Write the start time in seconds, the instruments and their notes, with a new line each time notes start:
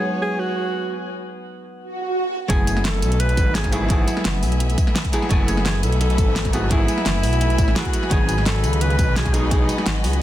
Already playing: hollow-body jazz guitar F#3 G#3 B3 D#4 G#4, string section B3 F#4 C#5 G#5
0.22 alto saxophone G#4
0.39 alto saxophone F#4
1.80 swell
2.48 detuned saw bass F#1, hollow-body jazz guitar F#3 A3 B3 E4 G#5, string section A3 E5 G#5 B5, alto saxophone G#4, kick, closed hi-hat
2.67 closed hi-hat, tambourine
2.77 snare
2.85 alto saxophone A4, snare, closed hi-hat
3.02 detuned saw bass B1, closed hi-hat, tambourine
3.12 closed hi-hat
3.20 alto saxophone B4, closed hi-hat
3.29 closed hi-hat
3.37 detuned saw bass G#1, kick, closed hi-hat, tambourine
3.55 alto saxophone G#4, snare, closed hi-hat, tambourine
3.64 kick, snare, closed hi-hat
3.72 hollow-body jazz guitar F#3 A3 B3 E4 G#4, alto saxophone E4, closed hi-hat, tambourine
3.88 hollow-body jazz guitar F#3 A3 B3 E4 G#4, kick, closed hi-hat
4.08 closed hi-hat, tambourine
4.17 snare
4.25 detuned saw bass F#1, snare, closed hi-hat
4.43 detuned saw bass B1, open hi-hat, tambourine
4.52 closed hi-hat
4.60 closed hi-hat
4.70 closed hi-hat
4.78 kick, closed hi-hat, tambourine
4.87 snare
4.96 snare, closed hi-hat, tambourine
5.05 kick, closed hi-hat
5.12 hollow-body jazz guitar F#3 A3 B3 E4 G#4, closed hi-hat, tambourine
5.22 snare
5.29 detuned saw bass F#1, hollow-body jazz guitar F#3 A3 B3 E4 G#5, kick, closed hi-hat
5.48 alto saxophone G#4, closed hi-hat, tambourine
5.57 snare
5.66 alto saxophone G#4, snare, closed hi-hat
5.83 detuned saw bass B1, alto saxophone A4, closed hi-hat, tambourine
5.92 closed hi-hat
6.01 alto saxophone A4, closed hi-hat
6.10 closed hi-hat
6.18 detuned saw bass G#1, kick, closed hi-hat, tambourine
6.36 snare, closed hi-hat, tambourine
6.45 kick, snare, closed hi-hat
6.52 hollow-body jazz guitar F#3 A3 B3 E4 G#4, alto saxophone F#4, closed hi-hat, tambourine
6.69 hollow-body jazz guitar F#3 A3 B3 E4 G#4, alto saxophone E4, kick, closed hi-hat
6.88 closed hi-hat, tambourine
6.98 snare
7.06 detuned saw bass F#1, snare, closed hi-hat
7.23 detuned saw bass B1, open hi-hat, tambourine
7.33 closed hi-hat, tambourine
7.41 closed hi-hat
7.50 closed hi-hat
7.58 detuned saw bass A1, kick, closed hi-hat, tambourine
7.68 snare
7.75 hollow-body jazz guitar F#3 A3 B3 E4 G#4, alto saxophone F#4, snare, closed hi-hat, tambourine
7.85 kick, closed hi-hat
7.93 closed hi-hat, tambourine
8.03 snare
8.10 detuned saw bass G#1, hollow-body jazz guitar D#3 F#3 B3 D#4 G#5, string section F#4 D#5, alto saxophone G#4, kick, closed hi-hat
8.29 closed hi-hat, tambourine
8.38 snare
8.46 alto saxophone A4, snare, closed hi-hat
8.64 detuned saw bass C#2, closed hi-hat, tambourine
8.73 closed hi-hat
8.81 alto saxophone B4, closed hi-hat
8.90 closed hi-hat
8.99 detuned saw bass B1, kick, closed hi-hat, tambourine
9.16 alto saxophone G#4, snare, closed hi-hat, tambourine
9.26 kick, snare, closed hi-hat
9.33 hollow-body jazz guitar F#3 G#3 B3 D#4 G#4, alto saxophone D#4, closed hi-hat, tambourine
9.50 hollow-body jazz guitar F#3 G#3 B3 D#4 G#4, kick, closed hi-hat
9.69 closed hi-hat, tambourine
9.78 snare
9.86 detuned saw bass G#1, snare, closed hi-hat
10.04 detuned saw bass C#2, open hi-hat, tambourine
10.13 closed hi-hat